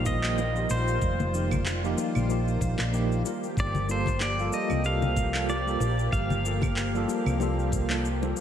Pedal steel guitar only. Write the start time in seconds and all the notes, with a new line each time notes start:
0.06 D#5
0.71 C5
3.60 D5
3.91 C5
4.22 D5
4.54 D#5
4.86 F5
5.50 D5
6.13 F5